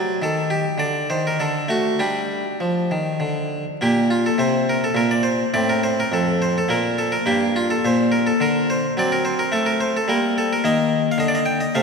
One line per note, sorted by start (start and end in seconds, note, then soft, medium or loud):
0.00 0.20 F#3 medium
0.00 0.17 D4 soft
0.00 0.13 D5 medium
0.22 0.63 D#3 soft
0.22 0.47 A4 medium
0.50 0.79 G4 medium
0.78 1.07 D3 soft
0.78 1.09 D5 medium
1.10 1.38 D#3 soft
1.10 1.24 C5 medium
1.27 1.40 A#4 medium
1.40 1.68 D3 soft
1.40 1.69 A4 medium
1.68 1.97 A3 soft
1.68 2.00 F#4 medium
1.99 2.43 G3 soft
1.99 3.76 D4 soft
1.99 3.51 G4 soft
2.60 2.89 F3 soft
2.91 3.19 D#3 soft
3.20 3.63 D3 soft
3.81 4.28 A#2 soft
3.81 5.52 A#3 soft
3.81 4.06 G4 medium
4.10 4.25 F4 medium
4.26 4.40 A4 medium
4.38 4.85 C3 soft
4.38 4.68 C5 medium
4.69 4.83 A#4 medium
4.84 4.98 A4 medium
4.95 5.42 A#2 medium
4.95 5.11 A#4 medium
5.11 5.26 D5 medium
5.23 5.49 C5 medium
5.54 6.00 A2 soft
5.54 6.65 C4 soft
5.54 5.69 D5 medium
5.69 5.84 A#4 medium
5.83 5.98 C5 medium
6.00 6.14 A#4 medium
6.12 6.58 F2 soft
6.12 6.42 A4 medium
6.42 6.56 C5 medium
6.58 6.71 A4 medium
6.68 7.15 A#2 soft
6.68 7.22 A#3 soft
6.68 6.98 A#4 medium
6.98 7.12 A4 medium
7.12 7.26 A#4 medium
7.26 7.72 G2 medium
7.26 8.91 A#3 soft
7.26 7.55 G4 medium
7.56 7.70 F4 medium
7.70 7.84 A4 medium
7.85 8.30 A#2 medium
7.85 8.09 C5 medium
8.12 8.26 A#4 medium
8.27 8.40 A4 medium
8.40 8.85 D3 medium
8.40 8.69 A#4 medium
8.70 8.93 C5 medium
8.97 9.41 F#3 medium
8.97 10.04 C4 soft
8.97 9.11 D5 medium
9.12 9.25 A#4 medium
9.25 9.38 C5 medium
9.39 9.52 A#4 medium
9.52 9.96 A3 medium
9.52 9.66 A4 medium
9.66 9.79 A#4 medium
9.80 9.94 C5 medium
9.97 10.09 A4 medium
10.08 10.52 G3 medium
10.08 10.59 A#3 soft
10.08 10.32 A#4 medium
10.38 10.50 A4 medium
10.53 10.64 A#4 medium
10.64 11.08 D#3 medium
10.64 11.71 A#3 soft
10.64 11.05 D#5 loud
11.12 11.20 F5 medium
11.18 11.63 D3 medium
11.18 11.28 D#5 medium
11.28 11.37 D5 medium
11.35 11.45 D#5 medium
11.46 11.60 G5 medium
11.60 11.74 D#5 medium
11.75 11.83 C3 medium
11.75 11.83 A3 soft
11.75 11.83 F5 loud